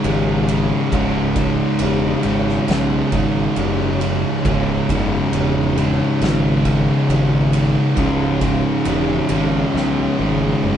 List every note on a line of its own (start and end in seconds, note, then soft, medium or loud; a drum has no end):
0.00 0.88 C#2 medium
0.00 0.92 C#2 medium
0.00 0.89 G#2 medium
0.00 0.89 G#2 loud
0.00 0.92 C#3 loud
0.00 0.94 C#3 medium
0.00 10.77 C#3 medium
0.00 10.77 F#3 medium
0.00 10.77 D#4 medium
0.04 0.71 G#1 loud
0.04 0.47 C#2 medium
0.04 0.47 G#2 medium
0.04 0.48 C#3 medium
0.04 ride loud
0.47 0.91 C#2 medium
0.47 0.91 G#2 medium
0.47 0.92 C#3 loud
0.47 ride medium
0.91 1.59 C#1 loud
0.91 1.35 C#2 medium
0.91 1.35 G#2 medium
0.91 1.36 C#3 loud
0.91 kick loud
0.91 ride medium
1.35 1.80 C#2 medium
1.35 1.80 G#2 loud
1.35 1.81 C#3 medium
1.35 kick medium
1.35 ride medium
1.79 2.14 E1 medium
1.79 2.23 C#2 medium
1.79 2.23 G#2 medium
1.79 2.24 C#3 medium
1.79 ride loud
2.23 2.58 G#1 medium
2.23 2.68 C#2 loud
2.23 2.68 G#2 loud
2.23 2.69 C#3 loud
2.23 ride medium
2.49 snare soft
2.68 3.02 B1 medium
2.68 3.12 C#2 medium
2.68 3.12 G#2 medium
2.68 3.12 C#3 medium
2.68 snare loud
2.68 ride loud
3.12 3.46 G#1 loud
3.12 3.55 C#2 medium
3.12 3.55 G#2 loud
3.12 3.56 C#3 loud
3.12 kick medium
3.12 ride medium
3.55 4.23 F#1 medium
3.55 4.00 C#2 medium
3.55 4.00 G#2 medium
3.55 4.01 C#3 loud
3.55 ride medium
4.00 4.43 C#2 medium
4.00 4.43 G#2 medium
4.00 4.44 C#3 medium
4.00 ride medium
4.44 4.78 C#1 loud
4.44 4.89 C#2 medium
4.44 4.89 G#2 medium
4.44 4.91 C#3 loud
4.44 kick loud
4.44 ride medium
4.89 5.22 F#1 medium
4.89 5.32 C#2 medium
4.89 5.32 G#2 loud
4.89 5.33 C#3 loud
4.89 kick medium
4.89 ride medium
5.33 5.99 E1 medium
5.33 5.78 C#2 medium
5.33 5.77 G#2 loud
5.33 5.78 C#3 medium
5.33 ride loud
5.78 6.21 C#2 loud
5.78 6.21 G#2 loud
5.78 6.22 C#3 loud
5.78 ride medium
6.21 6.88 G#1 medium
6.21 6.65 C#2 medium
6.21 6.65 G#2 medium
6.21 6.66 C#3 loud
6.21 snare loud
6.21 ride medium
6.65 7.08 C#2 loud
6.65 7.08 G#2 loud
6.65 7.10 C#3 loud
6.65 kick medium
6.65 ride medium
7.08 7.76 G#1 medium
7.08 7.53 C#2 medium
7.08 7.53 G#2 medium
7.08 7.54 C#3 loud
7.08 ride medium
7.53 7.96 C#2 medium
7.53 7.97 G#2 medium
7.53 7.97 C#3 medium
7.53 ride medium
7.97 8.64 C#1 loud
7.97 8.40 C#2 medium
7.97 8.41 G#2 medium
7.97 8.42 C#3 loud
7.97 kick loud
7.97 ride medium
8.41 8.84 C#2 loud
8.41 8.85 G#2 medium
8.41 8.85 C#3 medium
8.41 kick medium
8.41 ride medium
8.85 9.19 E1 medium
8.85 9.28 C#2 medium
8.85 9.29 G#2 medium
8.85 9.29 C#3 medium
8.85 ride loud
9.29 9.64 G#1 medium
9.29 9.73 C#2 loud
9.29 9.74 G#2 loud
9.29 9.75 C#3 loud
9.29 ride medium
9.74 10.08 B1 loud
9.74 10.16 C#2 medium
9.74 10.17 G#2 loud
9.74 10.18 C#3 loud
9.74 snare medium
10.17 10.53 G#1 medium
10.17 10.61 C#2 medium
10.17 10.61 G#2 loud
10.17 10.62 C#3 loud
10.17 high tom medium
10.41 high tom medium
10.62 10.77 F#1 medium
10.62 10.77 C#2 medium
10.62 10.77 G#2 medium
10.62 10.77 C#3 loud
10.62 mid tom medium